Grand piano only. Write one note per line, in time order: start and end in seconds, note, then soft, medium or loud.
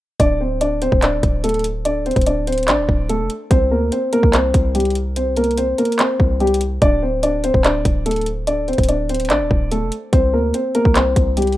0.20 0.40 D4 medium
0.20 0.39 D5 medium
0.41 0.60 C4 medium
0.41 0.60 C5 medium
0.61 0.81 D4 medium
0.61 0.81 D5 medium
0.82 1.02 C4 medium
0.82 1.01 C5 medium
1.03 1.42 D4 medium
1.03 1.41 D5 medium
1.44 1.64 A3 medium
1.44 1.63 A4 medium
1.85 2.05 D4 medium
1.85 2.05 D5 medium
2.06 2.26 C4 medium
2.06 2.25 C5 medium
2.27 2.47 D4 medium
2.27 2.46 D5 medium
2.47 2.67 C4 medium
2.47 2.67 C5 medium
2.68 3.07 D4 medium
2.68 3.07 D5 medium
3.09 3.29 A3 medium
3.09 3.29 A4 medium
3.51 3.71 C4 medium
3.51 3.70 C5 medium
3.71 3.91 A#3 medium
3.71 3.91 A#4 medium
3.92 4.12 C4 medium
3.92 4.12 C5 medium
4.13 4.33 A#3 medium
4.13 4.32 A#4 medium
4.33 4.73 C4 medium
4.33 4.72 C5 medium
4.75 4.95 G3 medium
4.75 4.94 G4 medium
5.16 5.36 C4 medium
5.16 5.36 C5 medium
5.37 5.57 A#3 medium
5.37 5.56 A#4 medium
5.58 5.78 C4 medium
5.58 5.77 C5 medium
5.78 5.98 A#3 medium
5.78 5.98 A#4 medium
5.99 6.38 C4 medium
5.99 6.38 C5 medium
6.40 6.60 G3 medium
6.40 6.60 G4 medium
6.82 7.02 D4 medium
6.82 7.01 D5 medium
7.02 7.22 C4 medium
7.02 7.22 C5 medium
7.23 7.43 D4 medium
7.23 7.43 D5 medium
7.44 7.64 C4 medium
7.44 7.63 C5 medium
7.65 8.04 D4 medium
7.65 8.03 D5 medium
8.06 8.26 A3 medium
8.06 8.25 A4 medium
8.47 8.67 D4 medium
8.47 8.67 D5 medium
8.68 8.88 C4 medium
8.68 8.87 C5 medium
8.89 9.09 D4 medium
8.89 9.08 D5 medium
9.09 9.29 C4 medium
9.09 9.29 C5 medium
9.30 9.69 D4 medium
9.30 9.69 D5 medium
9.71 9.91 A3 medium
9.71 9.91 A4 medium
10.13 10.33 C4 medium
10.13 10.32 C5 medium
10.34 10.53 A#3 medium
10.34 10.53 A#4 medium
10.54 10.74 C4 medium
10.54 10.74 C5 medium
10.75 10.95 A#3 medium
10.75 10.94 A#4 medium
10.96 11.35 C4 medium
10.96 11.34 C5 medium
11.37 11.57 G3 medium
11.37 11.56 G4 medium